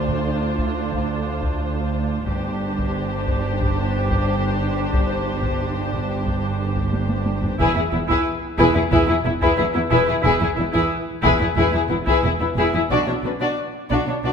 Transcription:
0.00 2.23 D2 soft
0.00 2.24 D2 soft
0.00 2.23 D4 soft
0.00 2.24 F4 soft
0.00 2.24 C5 soft
0.08 taiko medium
0.59 taiko medium
0.93 2.91 F5 soft
0.93 taiko medium
1.43 taiko medium
2.26 7.55 G1 medium
2.26 7.55 G2 soft
2.26 7.54 D4 soft
2.26 7.55 G4 medium
2.26 7.55 C5 soft
2.26 taiko medium
2.78 taiko medium
3.28 taiko medium
3.61 taiko medium
4.11 taiko medium
4.28 6.23 C5 soft
4.94 taiko medium
5.44 taiko medium
5.93 taiko medium
6.27 taiko medium
6.76 taiko medium
6.93 taiko high medium
7.09 taiko high medium
7.26 taiko high medium
7.43 taiko low medium
7.58 7.66 E1 medium
7.58 7.66 E2 medium
7.58 7.74 E4 medium
7.58 7.74 G#4 medium
7.58 7.75 B4 medium
7.58 taiko medium
7.76 7.83 E2 soft
7.76 7.82 E4 soft
7.76 7.83 E4 soft
7.76 7.85 G#4 soft
7.91 7.99 E1 soft
7.91 7.99 E2 soft
7.91 7.99 B3 soft
7.91 7.98 E4 soft
7.91 8.00 E4 soft
8.07 8.16 E2 medium
8.07 8.23 E4 medium
8.07 8.25 G#4 medium
8.07 8.25 B4 medium
8.07 taiko medium
8.58 8.66 E1 medium
8.58 8.65 E2 medium
8.58 8.74 E4 medium
8.58 8.74 G#4 medium
8.58 8.74 B4 medium
8.58 taiko medium
8.74 8.82 E2 soft
8.74 8.81 E4 soft
8.74 8.83 G#4 medium
8.91 8.99 E1 medium
8.91 8.98 E2 medium
8.91 9.06 E4 medium
8.91 9.07 G#4 medium
8.91 9.07 B4 medium
8.91 taiko medium
9.07 9.16 E2 soft
9.07 9.14 E4 medium
9.07 9.15 E4 medium
9.07 9.16 G#4 medium
9.25 9.32 E1 soft
9.25 9.33 E2 soft
9.25 9.32 B3 soft
9.25 9.31 E4 soft
9.25 9.32 E4 medium
9.41 9.50 E2 medium
9.41 9.56 E4 medium
9.41 9.57 G#4 medium
9.41 9.57 B4 medium
9.41 taiko medium
9.57 9.65 E1 soft
9.57 9.66 E2 medium
9.57 9.64 E4 soft
9.57 9.65 E4 medium
9.57 9.64 G#4 medium
9.57 11.52 B4 soft
9.74 9.82 E2 soft
9.74 9.81 B3 medium
9.74 9.80 E4 medium
9.74 9.82 E4 soft
9.90 9.98 E1 medium
9.90 9.98 E2 medium
9.90 10.05 E4 medium
9.90 10.06 G#4 medium
9.90 10.07 B4 medium
10.06 10.15 E2 soft
10.06 10.13 E4 medium
10.06 10.15 E4 medium
10.06 10.16 G#4 medium
10.22 10.31 E1 medium
10.22 10.31 E2 medium
10.22 10.38 E4 medium
10.22 10.40 G#4 medium
10.22 taiko medium
10.27 10.41 B4 medium
10.39 10.48 E2 soft
10.39 10.46 E4 soft
10.39 10.49 E4 soft
10.44 10.50 G#4 medium
10.55 10.65 E1 soft
10.55 10.64 E2 soft
10.55 10.64 B3 soft
10.55 10.62 E4 soft
10.60 10.66 E4 soft
10.72 10.81 E2 medium
10.72 10.88 E4 medium
10.72 10.89 G#4 medium
10.72 taiko medium
10.76 10.91 B4 medium
11.22 11.30 E1 medium
11.22 11.30 E2 medium
11.22 11.38 E4 medium
11.22 11.39 G#4 medium
11.22 11.40 B4 medium
11.22 taiko medium
11.39 11.47 E2 soft
11.39 11.46 E4 soft
11.39 11.47 E4 soft
11.43 11.49 G#4 soft
11.56 11.64 E1 medium
11.56 11.64 E2 medium
11.56 11.70 E4 medium
11.56 11.72 G#4 medium
11.56 11.73 B4 medium
11.56 taiko medium
11.71 11.80 E2 soft
11.71 11.78 E4 soft
11.71 11.81 E4 medium
11.76 11.82 G#4 soft
11.89 11.97 E1 soft
11.89 11.97 E2 soft
11.89 11.96 B3 soft
11.89 11.96 E4 soft
11.89 11.98 E4 soft
12.06 12.13 E2 medium
12.06 12.21 E4 medium
12.06 12.22 G#4 medium
12.06 12.23 B4 medium
12.06 taiko medium
12.23 12.30 E1 soft
12.23 12.30 E2 soft
12.23 12.30 E4 soft
12.23 12.31 E4 soft
12.23 12.32 G#4 soft
12.40 12.47 E2 soft
12.40 12.47 B3 medium
12.40 12.47 E4 soft
12.40 12.48 E4 soft
12.56 12.63 E1 medium
12.56 12.63 E2 medium
12.56 12.73 E4 medium
12.56 12.73 G#4 medium
12.56 12.73 B4 medium
12.74 12.81 E2 soft
12.74 12.81 E4 medium
12.74 12.81 E4 soft
12.74 12.81 G#4 soft
12.90 12.97 B1 medium
12.90 12.97 B2 medium
12.90 13.06 D4 medium
12.90 13.06 F#4 medium
12.90 13.06 D5 medium
12.90 taiko medium
13.07 13.14 B2 soft
13.07 13.14 D4 soft
13.07 13.15 D4 soft
13.07 13.14 C#5 soft
13.23 13.30 B1 soft
13.23 13.30 B2 soft
13.23 13.32 C#4 soft
13.23 13.31 D4 soft
13.23 13.31 B4 soft
13.40 13.47 B2 medium
13.40 13.56 D4 soft
13.40 13.56 F#4 medium
13.40 13.56 D5 soft
13.89 13.97 B1 medium
13.89 13.97 B2 medium
13.89 14.06 D4 medium
13.89 14.07 F#4 soft
13.89 14.05 D5 medium
13.89 taiko soft
14.07 14.14 B2 soft
14.07 14.14 D4 soft
14.07 14.16 D4 soft
14.07 14.14 C#5 soft
14.24 14.30 B1 soft
14.24 14.31 B2 medium
14.24 14.33 D4 soft
14.24 14.33 F#4 soft
14.24 14.33 D5 soft

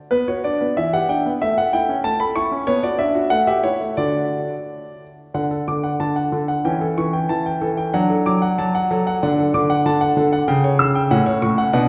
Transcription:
0.11 0.28 B3 medium
0.11 0.28 B4 medium
0.28 0.45 F#4 soft
0.28 0.45 C#5 medium
0.44 0.62 D4 soft
0.44 0.77 D5 medium
0.61 0.77 B3 soft
0.77 0.93 E3 medium
0.77 0.93 E5 medium
0.93 1.10 G4 soft
0.93 1.10 F#5 medium
1.09 1.27 D4 soft
1.09 1.29 G5 medium
1.26 1.42 B3 soft
1.42 1.57 A3 medium
1.42 1.58 E5 medium
1.58 1.74 A4 soft
1.58 1.74 F#5 medium
1.73 1.90 E4 soft
1.73 2.02 G5 medium
1.89 2.06 C#4 soft
2.04 2.20 A3 medium
2.04 2.20 A5 medium
2.20 2.37 A4 soft
2.20 2.36 B5 medium
2.36 2.53 E4 soft
2.36 2.68 C#6 medium
2.52 2.68 C#4 soft
2.67 2.83 B3 medium
2.67 2.84 C#5 medium
2.83 3.00 F#4 soft
2.83 3.00 D5 medium
2.99 3.17 D4 soft
2.99 3.31 E5 medium
3.15 3.32 F#4 soft
3.30 3.47 A3 medium
3.30 3.48 F#5 medium
3.47 3.65 G4 soft
3.47 3.65 E5 medium
3.63 3.82 E4 soft
3.63 3.95 C#5 medium
3.80 3.98 A3 soft
3.97 4.46 D3 soft
3.97 4.53 D4 soft
3.97 4.53 F#4 soft
3.97 5.01 D5 medium
5.34 5.66 D3 medium
5.34 6.61 D4 soft
5.34 5.52 F#5 medium
5.51 5.68 A4 soft
5.68 5.99 D3 medium
5.68 5.85 D6 soft
5.84 6.01 F#5 soft
6.00 6.31 D3 medium
6.00 6.17 A5 medium
6.16 6.33 F#5 medium
6.32 6.64 D3 medium
6.32 6.50 A4 soft
6.48 6.65 F#5 medium
6.65 6.96 E3 medium
6.65 7.89 C#4 soft
6.65 6.82 G5 medium
6.81 6.98 A4 medium
6.98 7.28 E3 medium
6.98 7.15 C#6 medium
7.13 7.30 G5 medium
7.29 7.60 E3 medium
7.29 7.46 A5 medium
7.46 7.63 G5 medium
7.61 7.92 E3 medium
7.61 7.78 A4 medium
7.77 7.93 G5 medium
7.94 8.25 F#3 medium
7.94 9.19 D4 medium
7.94 8.10 F#5 medium
8.10 8.27 A4 medium
8.26 8.57 F#3 medium
8.26 8.43 D6 medium
8.42 8.59 F#5 medium
8.58 8.89 F#3 medium
8.58 8.75 A5 medium
8.75 8.92 F#5 medium
8.91 9.22 F#3 medium
8.91 9.08 A4 medium
9.07 9.21 F#5 medium
9.23 9.53 D3 medium
9.23 10.44 D4 medium
9.23 9.39 F#5 medium
9.39 9.55 A4 medium
9.54 9.84 D3 medium
9.54 9.71 D6 medium
9.70 9.86 F#5 medium
9.86 10.15 D3 medium
9.86 10.02 A5 medium
10.01 10.17 F#5 medium
10.17 10.47 D3 medium
10.17 10.33 A4 medium
10.33 10.48 F#5 medium
10.48 10.78 C#3 medium
10.48 10.64 G5 medium
10.64 10.80 C#5 medium
10.79 11.10 C#3 medium
10.79 10.96 E6 medium
10.95 11.11 G5 medium
11.11 11.41 A2 medium
11.11 11.69 C#4 medium
11.11 11.27 F#5 medium
11.26 11.43 C#5 medium
11.42 11.72 A2 medium
11.42 11.59 C#6 medium
11.58 11.72 F#5 medium
11.73 11.88 B2 medium
11.73 11.88 D4 medium
11.73 11.88 F#5 medium

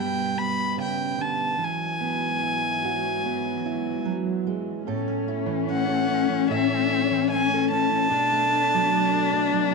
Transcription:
0.00 1.55 G2 medium
0.00 1.58 G2 medium
0.00 1.58 B2 medium
0.00 1.55 G3 medium
0.00 0.37 B3 medium
0.00 1.58 B3 medium
0.00 0.40 G5 medium
0.38 1.55 B3 medium
0.38 0.79 B5 medium
0.77 1.18 C#3 medium
0.82 1.23 G5 medium
1.18 1.59 D3 medium
1.18 1.66 A5 medium
1.58 4.82 G#2 medium
1.58 4.03 E3 medium
1.58 4.83 E3 medium
1.58 4.83 F#3 medium
1.64 4.06 G#5 medium
2.00 3.23 B3 medium
2.42 3.64 E4 medium
2.85 4.87 F#4 medium
3.26 4.82 B3 medium
3.66 4.82 E4 medium
4.05 4.45 F#3 medium
4.47 4.86 G#3 medium
4.85 8.07 A2 medium
4.85 6.48 A2 medium
4.85 8.07 A3 medium
4.85 8.07 C#4 medium
4.85 5.88 A4 medium
5.08 5.67 C#4 medium
5.28 6.90 E4 medium
5.46 6.28 E3 medium
5.69 6.08 C#4 medium
5.69 6.46 F#5 medium
5.89 6.50 A4 medium
6.09 6.69 C#4 medium
6.29 7.09 E3 medium
6.50 8.06 A2 medium
6.50 7.53 A4 medium
6.50 7.27 E5 medium
6.71 7.30 C#4 medium
6.93 8.08 E4 medium
7.11 7.89 E3 medium
7.31 7.70 C#4 medium
7.31 7.68 G#5 medium
7.54 8.11 A4 medium
7.71 8.06 C#4 medium
7.71 9.74 A5 loud
7.90 8.10 E3 medium
8.08 9.74 B2 medium
8.08 9.71 B2 medium
8.08 9.74 A3 medium
8.08 9.74 D4 medium
8.08 9.74 D4 loud
8.08 9.14 A4 medium
8.32 8.93 A3 medium
8.53 9.74 D4 medium
8.74 9.52 F#3 medium
8.93 9.32 A3 medium
9.14 9.72 A4 medium
9.33 9.74 A3 medium
9.52 9.74 F#3 medium

